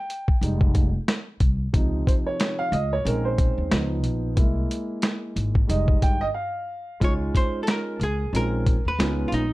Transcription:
Already playing: grand piano G5
0.10 closed hi-hat
0.28 kick
0.41 upright bass F1, grand piano G3 G#3 D#4, closed hi-hat
0.61 kick
0.75 kick, closed hi-hat
1.08 snare, closed hi-hat
1.40 upright bass C2, kick, closed hi-hat
1.73 upright bass C#2, grand piano C3 F3 D#4, kick, closed hi-hat
2.07 grand piano C5, kick, closed hi-hat
2.26 grand piano C#5
2.40 snare, closed hi-hat
2.59 grand piano F5
2.72 upright bass C#2, grand piano D#5, closed hi-hat
2.93 grand piano C#5
3.04 upright bass A#1, grand piano G#3 C4 C#4 D#4 A#4, closed hi-hat
3.25 grand piano C5
3.38 kick, closed hi-hat
3.58 upright bass D#2
3.71 upright bass C#2, grand piano F3 B3 D#4, snare, closed hi-hat
4.04 upright bass A#1, closed hi-hat
4.35 upright bass C2, grand piano G#3 A#3 E4, kick, closed hi-hat
4.71 closed hi-hat
5.02 snare, closed hi-hat
5.36 upright bass G#1, closed hi-hat
5.55 kick
5.67 upright bass F1, grand piano G3 G#3 D#4 D#5, closed hi-hat
5.88 kick
6.02 upright bass G1, grand piano G5, kick, closed hi-hat
6.21 grand piano D#5
6.34 grand piano F5
7.00 upright bass C#2, grand piano G#3 C#4 D#4 F4, kick, closed hi-hat
7.04 hollow-body jazz guitar C#5
7.35 hollow-body jazz guitar C5, kick, closed hi-hat
7.63 hollow-body jazz guitar A4
7.67 hollow-body jazz guitar A#4, snare, closed hi-hat
8.00 upright bass C#2, hollow-body jazz guitar G#4, closed hi-hat
8.33 upright bass A#1, grand piano G#3 C4 C#4 D#4 F4, hollow-body jazz guitar A#4, closed hi-hat
8.66 kick, closed hi-hat
8.85 upright bass D#2, hollow-body jazz guitar B4
8.98 upright bass C#2, grand piano G#3 B3 C#4 D#4 F4, snare, closed hi-hat
9.28 upright bass A#1, hollow-body jazz guitar F4
9.32 hollow-body jazz guitar D#4, closed hi-hat

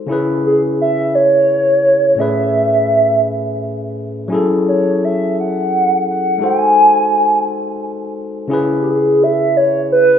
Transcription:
0.07 tine electric piano C#3 C#4 E4
0.11 tine electric piano G#4 B4
0.47 soft synth lead G#4
0.81 soft synth lead E5
1.15 soft synth lead C#5
2.15 tine electric piano A2 A3 C#4
2.20 tine electric piano G#4 B4, soft synth lead E5
4.28 tine electric piano F#3 C#4 E4
4.32 tine electric piano G#4 A4
4.68 soft synth lead C#5
5.05 soft synth lead E5
5.40 soft synth lead F#5
6.10 soft synth lead F#5
6.38 tine electric piano G#3 D#4 F#4
6.42 tine electric piano A4 C5, soft synth lead G#5
8.48 tine electric piano C#3 C#4 E4 G#4
8.53 tine electric piano B4
8.82 soft synth lead G4
8.89 soft synth lead G#4
9.23 soft synth lead E5
9.57 soft synth lead C#5
9.92 soft synth lead B4

